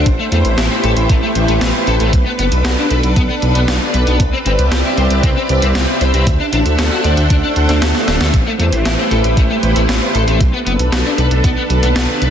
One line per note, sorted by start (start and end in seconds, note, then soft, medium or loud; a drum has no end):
0.00 2.09 C5 medium
0.06 0.17 A1 loud
0.06 2.11 A3 medium
0.06 2.11 E4 medium
0.06 2.11 G4 medium
0.06 6.23 B4 medium
0.06 kick loud
0.06 closed hi-hat medium
0.19 0.23 A3 loud
0.32 0.43 E2 medium
0.32 0.36 A3 medium
0.32 closed hi-hat medium
0.45 0.56 A1 medium
0.45 closed hi-hat medium
0.58 0.69 A1 loud
0.58 0.64 E4 medium
0.58 snare loud
0.58 closed hi-hat medium
0.71 0.75 C4 medium
0.84 0.95 A1 loud
0.84 0.90 A4 medium
0.84 closed hi-hat medium
0.97 1.07 A1 medium
0.97 closed hi-hat medium
1.09 1.20 A1 loud
1.09 1.13 A3 medium
1.09 kick loud
1.09 closed hi-hat medium
1.23 1.26 A3 medium
1.35 1.46 A1 medium
1.35 closed hi-hat medium
1.48 1.59 A1 medium
1.48 1.52 A3 medium
1.48 closed hi-hat medium
1.61 1.72 A1 loud
1.61 1.68 A3 medium
1.61 snare loud
1.61 closed hi-hat medium
1.87 1.98 A1 medium
1.87 1.94 A4 medium
1.87 closed hi-hat medium
2.00 2.11 A1 medium
2.00 2.10 A3 medium
2.00 closed hi-hat medium
2.13 2.24 B1 loud
2.13 4.18 D4 medium
2.13 4.18 A4 medium
2.13 kick loud
2.13 closed hi-hat medium
2.26 2.30 B3 medium
2.39 2.50 F#1 medium
2.39 2.43 B3 loud
2.39 closed hi-hat medium
2.52 2.63 B1 medium
2.52 closed hi-hat medium
2.65 2.76 B1 loud
2.65 2.71 F#4 medium
2.65 snare loud
2.65 closed hi-hat medium
2.78 2.82 D4 medium
2.91 3.01 B1 medium
2.91 2.97 B4 medium
2.91 closed hi-hat medium
3.03 3.14 B1 medium
3.03 closed hi-hat medium
3.16 3.27 B1 loud
3.16 3.20 B3 medium
3.16 kick loud
3.16 closed hi-hat medium
3.29 3.33 B3 medium
3.42 3.53 B1 loud
3.42 closed hi-hat medium
3.55 3.66 B1 medium
3.55 3.59 B3 medium
3.55 closed hi-hat medium
3.68 3.79 B1 loud
3.68 3.75 B3 medium
3.68 snare loud
3.68 closed hi-hat medium
3.94 4.05 B1 medium
3.94 4.00 B4 medium
3.94 closed hi-hat medium
4.07 4.18 B1 medium
4.07 4.17 B3 medium
4.07 closed hi-hat medium
4.20 4.31 C2 loud
4.20 6.25 C4 medium
4.20 6.25 G4 medium
4.20 6.25 D5 medium
4.20 8.30 E5 medium
4.20 kick loud
4.20 closed hi-hat medium
4.33 4.37 C4 medium
4.46 4.57 G1 medium
4.46 4.50 C4 loud
4.46 closed hi-hat medium
4.59 4.70 C2 medium
4.59 closed hi-hat medium
4.72 4.82 C2 loud
4.72 4.78 G4 medium
4.72 snare loud
4.72 closed hi-hat medium
4.85 4.88 E4 medium
4.98 5.08 C2 medium
4.98 5.04 C5 medium
4.98 closed hi-hat medium
5.10 5.21 C2 medium
5.10 closed hi-hat medium
5.23 5.34 C2 loud
5.23 5.27 C4 medium
5.23 kick loud
5.23 closed hi-hat medium
5.36 5.40 C4 medium
5.49 5.60 C2 loud
5.49 closed hi-hat medium
5.62 5.73 C2 medium
5.62 5.66 C4 medium
5.62 closed hi-hat medium
5.75 5.86 C2 loud
5.75 5.82 C4 medium
5.75 snare loud
5.75 closed hi-hat medium
6.01 6.12 C2 loud
6.01 6.07 C5 medium
6.01 closed hi-hat medium
6.14 6.25 C2 medium
6.14 6.24 C4 medium
6.14 closed hi-hat medium
6.27 6.38 D2 loud
6.27 8.32 D4 medium
6.27 8.32 A4 medium
6.27 8.32 C5 medium
6.27 8.32 F#5 medium
6.27 kick loud
6.27 closed hi-hat medium
6.40 6.44 D4 loud
6.53 6.63 A1 loud
6.53 6.57 D4 medium
6.53 closed hi-hat medium
6.66 6.76 D2 medium
6.66 closed hi-hat medium
6.79 6.89 D2 loud
6.79 6.85 A4 medium
6.79 snare loud
6.79 closed hi-hat medium
6.91 6.95 F#4 medium
7.04 7.15 D2 medium
7.04 7.11 D5 medium
7.04 closed hi-hat medium
7.17 7.28 D2 medium
7.17 closed hi-hat medium
7.30 7.41 D2 loud
7.30 7.34 D4 medium
7.30 kick loud
7.30 closed hi-hat medium
7.30 swell medium
7.43 7.47 D4 medium
7.56 7.67 D2 medium
7.56 closed hi-hat medium
7.69 7.80 D2 medium
7.69 7.75 D4 medium
7.69 snare soft
7.69 closed hi-hat medium
7.82 7.93 D2 loud
7.82 7.86 A4 medium
7.82 snare loud
7.82 closed hi-hat medium
7.95 snare medium
8.08 8.19 D1 medium
8.08 8.14 D4 medium
8.08 snare medium
8.08 closed hi-hat medium
8.21 8.32 D2 medium
8.21 8.25 A4 medium
8.21 snare medium
8.21 closed hi-hat medium
8.34 8.44 A1 loud
8.34 10.38 A3 medium
8.34 10.39 E4 medium
8.34 10.38 G4 medium
8.34 10.39 B4 medium
8.34 10.39 C5 medium
8.34 kick loud
8.34 closed hi-hat medium
8.47 8.50 A3 loud
8.59 8.70 E2 medium
8.59 8.63 A3 loud
8.59 closed hi-hat medium
8.72 8.83 A1 medium
8.72 closed hi-hat medium
8.85 8.96 A1 loud
8.85 8.92 E4 medium
8.85 snare loud
8.85 closed hi-hat loud
8.98 9.02 C4 medium
9.11 9.22 A1 loud
9.11 9.18 A4 medium
9.11 closed hi-hat medium
9.24 9.35 A1 medium
9.24 closed hi-hat medium
9.37 9.48 A1 loud
9.37 9.41 A3 medium
9.37 kick loud
9.37 closed hi-hat medium
9.50 9.54 A3 medium
9.63 9.74 A1 medium
9.63 closed hi-hat medium
9.76 9.87 A1 medium
9.76 9.80 A3 medium
9.76 closed hi-hat medium
9.89 10.00 A1 loud
9.89 9.95 A3 medium
9.89 snare loud
9.89 closed hi-hat medium
10.15 10.26 A1 medium
10.15 10.21 A4 medium
10.15 closed hi-hat medium
10.27 10.38 A1 medium
10.27 10.37 A3 medium
10.27 closed hi-hat medium
10.40 10.51 B1 loud
10.40 12.30 D4 medium
10.40 12.30 A4 medium
10.40 12.30 B4 medium
10.40 kick loud
10.40 closed hi-hat loud
10.53 10.57 B3 loud
10.66 10.77 F#1 loud
10.66 10.70 B3 medium
10.66 closed hi-hat medium
10.79 10.90 B1 medium
10.79 closed hi-hat medium
10.92 11.03 B1 loud
10.92 10.99 F#4 medium
10.92 snare loud
10.92 closed hi-hat medium
11.05 11.09 D4 medium
11.18 11.29 B1 medium
11.18 11.25 B4 medium
11.18 closed hi-hat medium
11.31 11.42 B1 medium
11.31 closed hi-hat medium
11.44 11.55 B1 loud
11.44 11.48 B3 medium
11.44 kick loud
11.44 closed hi-hat medium
11.57 11.61 B3 medium
11.70 11.81 B1 medium
11.70 closed hi-hat medium
11.83 11.94 B1 medium
11.83 11.87 B3 medium
11.83 closed hi-hat medium
11.96 12.07 B1 loud
11.96 12.02 B3 medium
11.96 snare loud
11.96 closed hi-hat medium
12.21 12.30 B1 medium
12.21 12.28 B4 medium
12.21 closed hi-hat medium